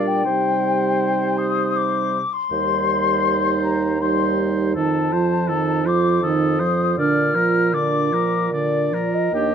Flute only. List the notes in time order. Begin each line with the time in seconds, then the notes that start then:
0.07 G5
1.37 D#6
1.76 D6
2.33 C6
3.64 A#5
4.01 C6
4.76 A5
5.87 D6
6.23 D#6
6.99 F6
7.74 D6
8.53 D5
9.14 D#5